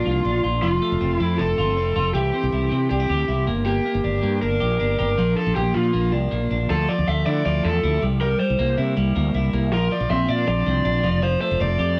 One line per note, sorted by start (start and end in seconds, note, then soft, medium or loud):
0.00 0.61 F3 medium
0.00 0.67 A#3 medium
0.00 0.23 D4 medium
0.00 0.40 F4 medium
0.06 0.22 C2 medium
0.06 0.43 F4 medium
0.25 0.41 A#1 medium
0.25 0.67 D4 medium
0.44 0.60 A#1 medium
0.44 0.67 F4 medium
0.62 0.79 F1 medium
0.62 2.15 F3 medium
0.62 1.16 F4 medium
0.82 1.19 A3 medium
0.92 0.99 F1 medium
1.01 1.17 F1 medium
1.01 1.39 C4 medium
1.16 1.41 F2 medium
1.16 2.19 A3 medium
1.16 1.41 E4 medium
1.38 1.55 F1 medium
1.38 1.76 C4 medium
1.38 2.10 A4 medium
1.58 1.76 G1 medium
1.58 1.95 F4 medium
1.76 1.92 F1 medium
1.76 2.19 C4 medium
1.96 2.12 F1 medium
1.96 2.19 F4 medium
2.14 2.30 C2 loud
2.14 3.52 E3 medium
2.14 2.86 G4 medium
2.34 2.71 C4 medium
2.43 2.51 C2 medium
2.52 2.68 C2 medium
2.52 2.90 E4 medium
2.71 2.87 C3 medium
2.71 3.47 C4 medium
2.90 3.06 C2 medium
2.90 3.00 D4 medium
2.90 3.43 G4 medium
3.00 3.27 E4 medium
3.09 3.25 D2 medium
3.09 3.51 G4 medium
3.28 3.49 C2 medium
3.28 3.51 E4 medium
3.47 3.78 G1 medium
3.47 3.66 A#3 medium
3.66 3.85 A#3 medium
3.66 4.38 G4 loud
3.85 4.22 A#3 medium
3.94 4.02 G1 medium
4.04 4.20 G1 medium
4.04 4.41 D4 medium
4.23 4.39 G2 medium
4.23 5.22 A#3 medium
4.42 4.58 G1 medium
4.42 4.79 D4 medium
4.42 4.95 A#4 loud
4.60 4.77 A#1 medium
4.60 4.98 G4 medium
4.80 4.96 G1 medium
4.80 6.12 D4 medium
4.99 5.15 G1 medium
4.99 5.22 G4 medium
4.99 5.37 A#4 loud
5.18 5.34 A#1 loud
5.18 5.36 F3 medium
5.37 5.74 F3 medium
5.37 5.55 A4 medium
5.47 5.54 A#1 medium
5.56 5.72 A#1 medium
5.56 5.92 A#3 medium
5.56 5.75 G4 medium
5.74 5.91 A#2 medium
5.74 6.68 F3 medium
5.74 6.10 F4 medium
5.93 6.13 A#1 medium
5.93 6.30 A#3 medium
6.12 6.29 C2 medium
6.12 6.49 D4 medium
6.31 6.48 A#1 medium
6.31 6.73 A#3 medium
6.51 6.66 A#1 medium
6.51 6.74 D4 medium
6.69 6.86 D2 loud
6.69 6.87 F3 medium
6.69 6.90 A4 medium
6.89 7.44 F3 medium
6.89 7.07 D5 medium
6.98 7.06 D2 medium
7.07 7.23 D2 medium
7.07 7.63 A3 medium
7.07 7.26 E5 medium
7.26 7.42 D3 medium
7.26 7.82 E4 medium
7.26 7.44 D5 medium
7.45 7.61 D2 medium
7.45 8.02 F3 medium
7.45 7.65 D5 medium
7.64 7.80 E2 medium
7.64 8.06 A3 medium
7.64 8.00 A4 medium
7.83 7.99 D2 medium
7.83 8.06 E4 medium
8.02 8.34 C2 medium
8.02 8.20 G3 medium
8.21 8.39 G3 medium
8.21 8.40 A#4 medium
8.40 8.96 G3 medium
8.40 8.75 C5 medium
8.50 8.58 C2 medium
8.59 8.75 C2 medium
8.59 9.14 A#3 medium
8.78 8.94 C3 medium
8.78 9.34 E4 medium
8.97 9.12 C2 medium
8.97 9.72 G3 medium
9.16 9.31 D2 medium
9.16 9.52 A#3 medium
9.34 9.50 C2 medium
9.34 9.76 E4 medium
9.53 9.72 C2 medium
9.53 9.76 A#3 medium
9.72 9.88 A#1 loud
9.72 9.91 F3 medium
9.72 9.90 A#4 medium
9.91 10.47 F3 medium
9.91 10.09 D5 loud
10.00 10.08 A#1 medium
10.10 10.26 A#1 medium
10.10 10.66 C4 medium
10.10 10.30 E5 loud
10.29 10.45 A#2 medium
10.29 10.84 D4 medium
10.29 10.47 D5 medium
10.47 10.63 A#1 medium
10.47 11.02 F3 medium
10.47 11.26 D5 loud
10.66 10.82 C2 medium
10.66 11.08 C4 medium
10.85 11.01 A#1 medium
10.85 11.08 D4 medium
11.04 11.35 F1 medium
11.04 11.21 F3 medium
11.22 11.99 F3 medium
11.22 11.40 C5 loud
11.41 11.97 A3 medium
11.41 11.59 C5 medium
11.51 11.59 F1 medium
11.60 11.76 F1 loud
11.60 11.99 C4 medium
11.60 11.96 D5 medium
11.79 11.99 F2 medium
11.79 11.99 G4 medium